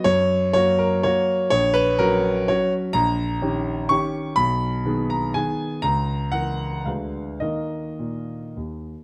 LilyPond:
<<
  \new Staff \with { instrumentName = "Grand piano" } { \time 3/4 \key fis \mixolydian \tempo 4 = 122 cis''4 cis''8 ais'8 cis''4 | cis''8 b'8 ais'4 cis''8 r8 | \key dis \phrygian ais''2 cis'''4 | b''4. ais''8 gis''4 |
ais''4 fis''4 f''4 | dis''2 r4 | }
  \new Staff \with { instrumentName = "Grand piano" } { \time 3/4 \key fis \mixolydian fis,4 <fis ais fis'>4 <fis ais fis'>4 | ais,,4 <fis cis' fis'>4 <fis cis' fis'>4 | \key dis \phrygian ais,,4 <dis cis' g'>4 <dis cis' g'>4 | b,,4 <dis b gis'>4 <dis b gis'>4 |
cis,4 <e e' ais'>4 <d, aes d' b'>4 | <dis ais ais'>4 ais,4 dis,4 | }
>>